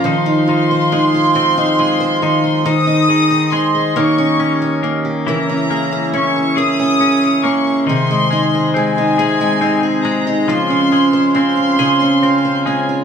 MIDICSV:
0, 0, Header, 1, 5, 480
1, 0, Start_track
1, 0, Key_signature, -4, "major"
1, 0, Tempo, 869565
1, 31, Time_signature, 6, 3, 24, 8
1, 7199, End_track
2, 0, Start_track
2, 0, Title_t, "Violin section"
2, 0, Program_c, 0, 48
2, 29, Note_on_c, 0, 84, 101
2, 1469, Note_off_c, 0, 84, 0
2, 1471, Note_on_c, 0, 87, 116
2, 1942, Note_on_c, 0, 84, 92
2, 1950, Note_off_c, 0, 87, 0
2, 2184, Note_on_c, 0, 85, 95
2, 2186, Note_off_c, 0, 84, 0
2, 2667, Note_off_c, 0, 85, 0
2, 2908, Note_on_c, 0, 82, 99
2, 3366, Note_off_c, 0, 82, 0
2, 3390, Note_on_c, 0, 85, 93
2, 3629, Note_on_c, 0, 87, 114
2, 3630, Note_off_c, 0, 85, 0
2, 4106, Note_on_c, 0, 85, 93
2, 4109, Note_off_c, 0, 87, 0
2, 4343, Note_on_c, 0, 84, 99
2, 4347, Note_off_c, 0, 85, 0
2, 4804, Note_off_c, 0, 84, 0
2, 4825, Note_on_c, 0, 80, 108
2, 5525, Note_off_c, 0, 80, 0
2, 5540, Note_on_c, 0, 82, 88
2, 5782, Note_on_c, 0, 84, 105
2, 5785, Note_off_c, 0, 82, 0
2, 6255, Note_off_c, 0, 84, 0
2, 6262, Note_on_c, 0, 84, 108
2, 6963, Note_off_c, 0, 84, 0
2, 6983, Note_on_c, 0, 80, 84
2, 7199, Note_off_c, 0, 80, 0
2, 7199, End_track
3, 0, Start_track
3, 0, Title_t, "Steel-string acoustic guitar"
3, 0, Program_c, 1, 25
3, 0, Note_on_c, 1, 46, 86
3, 0, Note_on_c, 1, 61, 59
3, 0, Note_on_c, 1, 65, 56
3, 22, Note_on_c, 1, 53, 78
3, 26, Note_on_c, 1, 72, 68
3, 76, Note_off_c, 1, 61, 0
3, 77, Note_off_c, 1, 46, 0
3, 143, Note_on_c, 1, 63, 62
3, 159, Note_off_c, 1, 65, 0
3, 262, Note_on_c, 1, 65, 58
3, 389, Note_off_c, 1, 72, 0
3, 392, Note_on_c, 1, 72, 70
3, 506, Note_off_c, 1, 63, 0
3, 508, Note_on_c, 1, 63, 68
3, 624, Note_off_c, 1, 65, 0
3, 631, Note_on_c, 1, 65, 57
3, 739, Note_off_c, 1, 53, 0
3, 746, Note_on_c, 1, 53, 81
3, 747, Note_off_c, 1, 72, 0
3, 750, Note_on_c, 1, 72, 70
3, 867, Note_off_c, 1, 63, 0
3, 870, Note_on_c, 1, 63, 69
3, 980, Note_off_c, 1, 65, 0
3, 987, Note_on_c, 1, 65, 61
3, 1099, Note_off_c, 1, 72, 0
3, 1105, Note_on_c, 1, 72, 69
3, 1224, Note_off_c, 1, 63, 0
3, 1226, Note_on_c, 1, 63, 62
3, 1338, Note_off_c, 1, 65, 0
3, 1345, Note_on_c, 1, 65, 55
3, 1463, Note_off_c, 1, 53, 0
3, 1464, Note_off_c, 1, 72, 0
3, 1466, Note_on_c, 1, 51, 81
3, 1471, Note_on_c, 1, 72, 66
3, 1515, Note_off_c, 1, 65, 0
3, 1583, Note_off_c, 1, 63, 0
3, 1585, Note_on_c, 1, 63, 60
3, 1702, Note_on_c, 1, 68, 58
3, 1817, Note_off_c, 1, 72, 0
3, 1824, Note_on_c, 1, 72, 71
3, 1937, Note_off_c, 1, 63, 0
3, 1944, Note_on_c, 1, 63, 59
3, 2062, Note_off_c, 1, 68, 0
3, 2069, Note_on_c, 1, 68, 54
3, 2179, Note_off_c, 1, 51, 0
3, 2185, Note_on_c, 1, 51, 78
3, 2187, Note_off_c, 1, 72, 0
3, 2190, Note_on_c, 1, 73, 62
3, 2234, Note_off_c, 1, 63, 0
3, 2237, Note_off_c, 1, 68, 0
3, 2309, Note_on_c, 1, 61, 62
3, 2427, Note_on_c, 1, 67, 61
3, 2546, Note_off_c, 1, 73, 0
3, 2549, Note_on_c, 1, 73, 60
3, 2668, Note_off_c, 1, 61, 0
3, 2670, Note_on_c, 1, 61, 56
3, 2780, Note_off_c, 1, 67, 0
3, 2787, Note_on_c, 1, 67, 52
3, 2914, Note_on_c, 1, 49, 80
3, 2916, Note_off_c, 1, 73, 0
3, 2918, Note_on_c, 1, 70, 65
3, 2955, Note_off_c, 1, 51, 0
3, 2956, Note_off_c, 1, 67, 0
3, 3031, Note_off_c, 1, 61, 0
3, 3033, Note_on_c, 1, 61, 54
3, 3150, Note_on_c, 1, 68, 59
3, 3264, Note_off_c, 1, 70, 0
3, 3271, Note_on_c, 1, 70, 65
3, 3380, Note_off_c, 1, 61, 0
3, 3386, Note_on_c, 1, 61, 65
3, 3509, Note_off_c, 1, 68, 0
3, 3511, Note_on_c, 1, 68, 56
3, 3625, Note_off_c, 1, 70, 0
3, 3626, Note_off_c, 1, 49, 0
3, 3631, Note_on_c, 1, 49, 79
3, 3634, Note_on_c, 1, 70, 58
3, 3743, Note_off_c, 1, 61, 0
3, 3750, Note_on_c, 1, 61, 63
3, 3866, Note_off_c, 1, 68, 0
3, 3868, Note_on_c, 1, 68, 61
3, 3988, Note_off_c, 1, 70, 0
3, 3994, Note_on_c, 1, 70, 61
3, 4106, Note_off_c, 1, 61, 0
3, 4112, Note_on_c, 1, 61, 61
3, 4231, Note_off_c, 1, 68, 0
3, 4233, Note_on_c, 1, 68, 52
3, 4351, Note_off_c, 1, 49, 0
3, 4357, Note_on_c, 1, 48, 76
3, 4358, Note_off_c, 1, 68, 0
3, 4360, Note_on_c, 1, 68, 54
3, 4399, Note_off_c, 1, 61, 0
3, 4400, Note_off_c, 1, 70, 0
3, 4476, Note_on_c, 1, 56, 60
3, 4596, Note_on_c, 1, 63, 61
3, 4716, Note_off_c, 1, 68, 0
3, 4718, Note_on_c, 1, 68, 70
3, 4836, Note_off_c, 1, 56, 0
3, 4838, Note_on_c, 1, 56, 68
3, 4950, Note_off_c, 1, 63, 0
3, 4957, Note_on_c, 1, 63, 59
3, 5066, Note_off_c, 1, 48, 0
3, 5073, Note_on_c, 1, 48, 83
3, 5074, Note_off_c, 1, 68, 0
3, 5076, Note_on_c, 1, 68, 67
3, 5192, Note_off_c, 1, 56, 0
3, 5194, Note_on_c, 1, 56, 66
3, 5301, Note_off_c, 1, 63, 0
3, 5308, Note_on_c, 1, 63, 60
3, 5423, Note_off_c, 1, 68, 0
3, 5425, Note_on_c, 1, 68, 67
3, 5544, Note_off_c, 1, 56, 0
3, 5546, Note_on_c, 1, 56, 63
3, 5661, Note_off_c, 1, 63, 0
3, 5668, Note_on_c, 1, 63, 62
3, 5790, Note_off_c, 1, 48, 0
3, 5792, Note_on_c, 1, 49, 76
3, 5795, Note_on_c, 1, 72, 67
3, 5836, Note_off_c, 1, 63, 0
3, 5907, Note_on_c, 1, 61, 61
3, 6022, Note_off_c, 1, 68, 0
3, 6024, Note_on_c, 1, 65, 58
3, 6138, Note_off_c, 1, 72, 0
3, 6145, Note_on_c, 1, 72, 70
3, 6261, Note_off_c, 1, 61, 0
3, 6263, Note_on_c, 1, 61, 66
3, 6380, Note_off_c, 1, 65, 0
3, 6387, Note_on_c, 1, 65, 60
3, 6501, Note_off_c, 1, 49, 0
3, 6505, Note_off_c, 1, 72, 0
3, 6508, Note_on_c, 1, 49, 86
3, 6512, Note_on_c, 1, 72, 69
3, 6632, Note_off_c, 1, 61, 0
3, 6635, Note_on_c, 1, 61, 66
3, 6746, Note_off_c, 1, 65, 0
3, 6753, Note_on_c, 1, 65, 62
3, 6865, Note_off_c, 1, 72, 0
3, 6872, Note_on_c, 1, 72, 62
3, 6992, Note_off_c, 1, 61, 0
3, 6994, Note_on_c, 1, 61, 60
3, 7109, Note_off_c, 1, 65, 0
3, 7115, Note_on_c, 1, 65, 58
3, 7199, Note_off_c, 1, 49, 0
3, 7199, Note_off_c, 1, 56, 0
3, 7199, Note_off_c, 1, 61, 0
3, 7199, Note_off_c, 1, 65, 0
3, 7199, Note_off_c, 1, 72, 0
3, 7199, End_track
4, 0, Start_track
4, 0, Title_t, "Brass ensemble"
4, 0, Program_c, 2, 61
4, 0, Note_on_c, 2, 65, 71
4, 0, Note_on_c, 2, 77, 86
4, 33, Note_on_c, 2, 56, 73
4, 35, Note_on_c, 2, 72, 69
4, 36, Note_on_c, 2, 63, 73
4, 1450, Note_off_c, 2, 77, 0
4, 1451, Note_off_c, 2, 65, 0
4, 1469, Note_on_c, 2, 51, 73
4, 1469, Note_on_c, 2, 60, 71
4, 1473, Note_on_c, 2, 75, 88
4, 2169, Note_off_c, 2, 56, 0
4, 2170, Note_off_c, 2, 63, 0
4, 2170, Note_off_c, 2, 72, 0
4, 2182, Note_off_c, 2, 51, 0
4, 2182, Note_off_c, 2, 60, 0
4, 2186, Note_on_c, 2, 61, 71
4, 2186, Note_on_c, 2, 63, 70
4, 2187, Note_on_c, 2, 55, 70
4, 2189, Note_on_c, 2, 70, 73
4, 2896, Note_off_c, 2, 75, 0
4, 2900, Note_off_c, 2, 63, 0
4, 2901, Note_off_c, 2, 55, 0
4, 2909, Note_on_c, 2, 56, 77
4, 2909, Note_on_c, 2, 76, 77
4, 2910, Note_on_c, 2, 64, 71
4, 4326, Note_off_c, 2, 61, 0
4, 4327, Note_off_c, 2, 70, 0
4, 4334, Note_off_c, 2, 76, 0
4, 4335, Note_off_c, 2, 64, 0
4, 4344, Note_on_c, 2, 48, 80
4, 4345, Note_on_c, 2, 72, 76
4, 4347, Note_on_c, 2, 75, 83
4, 4348, Note_on_c, 2, 60, 68
4, 4348, Note_on_c, 2, 63, 73
4, 5772, Note_off_c, 2, 48, 0
4, 5773, Note_off_c, 2, 75, 0
4, 5774, Note_off_c, 2, 60, 0
4, 5774, Note_off_c, 2, 63, 0
4, 5793, Note_on_c, 2, 65, 72
4, 5795, Note_on_c, 2, 77, 88
4, 5796, Note_on_c, 2, 49, 73
4, 7199, Note_off_c, 2, 49, 0
4, 7199, Note_off_c, 2, 56, 0
4, 7199, Note_off_c, 2, 65, 0
4, 7199, Note_off_c, 2, 72, 0
4, 7199, Note_off_c, 2, 77, 0
4, 7199, End_track
5, 0, Start_track
5, 0, Title_t, "Clean electric guitar"
5, 0, Program_c, 3, 27
5, 0, Note_on_c, 3, 58, 67
5, 0, Note_on_c, 3, 61, 64
5, 31, Note_on_c, 3, 51, 78
5, 79, Note_off_c, 3, 58, 0
5, 80, Note_off_c, 3, 61, 0
5, 268, Note_off_c, 3, 51, 0
5, 270, Note_on_c, 3, 51, 65
5, 511, Note_on_c, 3, 56, 59
5, 751, Note_on_c, 3, 60, 66
5, 990, Note_off_c, 3, 56, 0
5, 992, Note_on_c, 3, 56, 64
5, 1227, Note_off_c, 3, 51, 0
5, 1229, Note_on_c, 3, 51, 68
5, 1465, Note_off_c, 3, 51, 0
5, 1467, Note_on_c, 3, 51, 79
5, 1518, Note_off_c, 3, 60, 0
5, 1519, Note_off_c, 3, 56, 0
5, 1708, Note_off_c, 3, 51, 0
5, 1710, Note_on_c, 3, 51, 54
5, 1947, Note_on_c, 3, 56, 60
5, 2187, Note_off_c, 3, 56, 0
5, 2189, Note_on_c, 3, 58, 79
5, 2238, Note_off_c, 3, 51, 0
5, 2427, Note_on_c, 3, 61, 62
5, 2664, Note_off_c, 3, 58, 0
5, 2666, Note_on_c, 3, 58, 61
5, 2907, Note_on_c, 3, 52, 78
5, 3146, Note_off_c, 3, 58, 0
5, 3148, Note_on_c, 3, 58, 58
5, 3387, Note_off_c, 3, 61, 0
5, 3389, Note_on_c, 3, 61, 54
5, 3626, Note_on_c, 3, 68, 70
5, 3859, Note_off_c, 3, 61, 0
5, 3866, Note_on_c, 3, 61, 59
5, 4098, Note_off_c, 3, 58, 0
5, 4105, Note_on_c, 3, 58, 64
5, 4341, Note_off_c, 3, 52, 0
5, 4344, Note_on_c, 3, 51, 75
5, 4395, Note_off_c, 3, 58, 0
5, 4396, Note_off_c, 3, 61, 0
5, 4585, Note_on_c, 3, 56, 58
5, 4826, Note_on_c, 3, 60, 58
5, 5066, Note_off_c, 3, 68, 0
5, 5068, Note_on_c, 3, 68, 69
5, 5303, Note_off_c, 3, 60, 0
5, 5306, Note_on_c, 3, 60, 68
5, 5545, Note_off_c, 3, 56, 0
5, 5548, Note_on_c, 3, 56, 71
5, 5784, Note_off_c, 3, 51, 0
5, 5786, Note_on_c, 3, 53, 82
5, 6027, Note_off_c, 3, 56, 0
5, 6030, Note_on_c, 3, 56, 61
5, 6267, Note_off_c, 3, 60, 0
5, 6270, Note_on_c, 3, 60, 59
5, 6506, Note_off_c, 3, 68, 0
5, 6508, Note_on_c, 3, 68, 69
5, 6744, Note_off_c, 3, 60, 0
5, 6750, Note_on_c, 3, 60, 64
5, 6982, Note_off_c, 3, 56, 0
5, 6988, Note_on_c, 3, 56, 70
5, 7199, Note_off_c, 3, 53, 0
5, 7199, Note_off_c, 3, 56, 0
5, 7199, Note_off_c, 3, 60, 0
5, 7199, Note_off_c, 3, 68, 0
5, 7199, End_track
0, 0, End_of_file